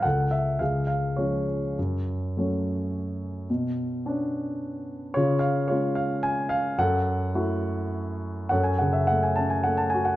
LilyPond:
<<
  \new Staff \with { instrumentName = "Grand piano" } { \time 3/4 \key fis \minor \tempo 4 = 107 << { fis''8 e''8 eis''8 eis''8 cis''8. r16 | r2. | r2. | cis''8 eis''8 cis''8 eis''8 gis''8 eis''8 |
fis''4 r2 | fis''16 gis''16 fis''16 e''16 fis''16 gis''16 a''16 gis''16 fis''16 a''16 gis''16 fis''16 | } \\ { a'4 gis'4. r8 | r2. | r2. | eis'4. r4. |
a'4. r4. | <a' cis''>4. r4. | } >> }
  \new Staff \with { instrumentName = "Grand piano" } { \time 3/4 \key fis \minor cis,4 cis,4 <eis gis cis'>4 | fis,4 <fis a cis'>2 | b,4 <b cis' d'>2 | cis4 <gis cis' eis'>2 |
fis,4 <a e' fis'>2 | fis,8 cis8 a8 cis'8 a8 fis'8 | }
>>